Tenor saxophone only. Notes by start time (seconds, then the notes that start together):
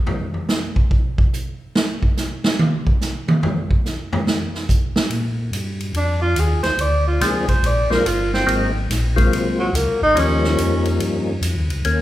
5.97 D4
6.22 F4
6.40 G#4
6.63 C5
6.81 D5
7.07 F4
7.23 G#4
7.49 C5
7.67 D5
7.91 A#4
8.07 F4
8.33 C4
9.59 F#3
9.76 A#3
10.02 D#4
10.18 C#4